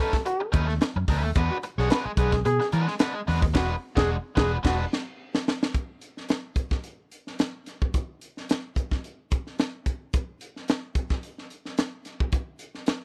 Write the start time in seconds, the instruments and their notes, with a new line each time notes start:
0.00 overdriven electric guitar A3 C#4 D#4 B4, trombone A4
0.13 muted overdriven electric guitar stroke, kick, snare
0.26 trombone F#4, muted overdriven electric guitar stroke, closed hi-hat
0.40 muted overdriven electric guitar stroke
0.52 fingered electric bass D#2, overdriven electric guitar A3 C#4 D#4 B4, kick, closed hi-hat
0.68 muted overdriven electric guitar stroke, snare
0.81 muted overdriven electric guitar stroke, snare, closed hi-hat
0.96 fingered electric bass F#2, muted overdriven electric guitar stroke
1.08 fingered electric bass D2, overdriven electric guitar A3 C#4 D#4 B4, kick, open hi-hat
1.23 fingered electric bass D#2, muted overdriven electric guitar stroke
1.35 fingered electric bass E2, overdriven electric guitar G#3 D4 F#4 B4, kick, closed hi-hat
1.51 trombone F#4
1.63 muted overdriven electric guitar stroke, closed hi-hat
1.78 fingered electric bass B1, overdriven electric guitar G#3 D4 F#4 C#5, trombone G#4, snare
1.90 overdriven electric guitar G#3 D4 F#4 B4, trombone B4, snare, closed hi-hat
2.05 muted fingered electric bass stroke, muted overdriven electric guitar stroke
2.17 fingered electric bass B1, overdriven electric guitar G#3 D4 F#4 B4, trombone G#4, kick, closed hi-hat
2.32 muted overdriven electric guitar stroke, kick, snare
2.45 fingered electric bass B2, trombone G#4, muted overdriven electric guitar stroke, closed hi-hat
2.60 muted overdriven electric guitar stroke, snare
2.72 fingered electric bass E3, overdriven electric guitar G#3 D4 F#4 B4, closed hi-hat
2.88 muted overdriven electric guitar stroke, snare
2.99 overdriven electric guitar G#3 D4 F#4 B4, snare, closed hi-hat
3.14 muted overdriven electric guitar stroke
3.27 fingered electric bass E2, overdriven electric guitar G#3 D4 F#4 B4, snare, open hi-hat
3.41 fingered electric bass D#2, muted overdriven electric guitar stroke, kick
3.54 fingered electric bass E1, overdriven electric guitar G#3 D4 F#4 B4, trombone F#4, kick, snare, crash
3.96 fingered electric bass E1, overdriven electric guitar G#3 D4 F#4, trombone G#4, kick, snare
4.35 fingered electric bass E1, overdriven electric guitar G#3 D4 F#4 B4, trombone G#4, kick, snare
4.63 fingered electric bass E1, overdriven electric guitar G#3 D4 F#4 B4, trombone F#4, kick, snare, crash
4.93 snare
5.35 snare
5.48 snare
5.63 snare
5.75 kick, closed hi-hat
6.01 closed hi-hat
6.17 snare
6.29 snare, closed hi-hat
6.56 kick, closed hi-hat
6.71 kick, snare
6.84 closed hi-hat
7.12 closed hi-hat
7.27 snare
7.39 snare, closed hi-hat
7.66 snare, closed hi-hat
7.82 kick
7.94 kick, closed hi-hat
8.21 closed hi-hat
8.37 snare
8.49 snare, closed hi-hat
8.76 kick, closed hi-hat
8.91 kick, snare
9.04 closed hi-hat
9.31 kick, closed hi-hat
9.47 snare
9.59 snare, closed hi-hat
9.86 kick, closed hi-hat
10.13 kick, closed hi-hat
10.41 closed hi-hat
10.56 snare
10.68 snare, closed hi-hat
10.95 kick, closed hi-hat
11.10 kick, snare
11.23 closed hi-hat
11.38 snare
11.50 closed hi-hat
11.66 snare
11.78 snare, closed hi-hat
12.05 snare, closed hi-hat
12.20 kick
12.32 kick, closed hi-hat
12.59 closed hi-hat
12.75 snare
12.86 snare, closed hi-hat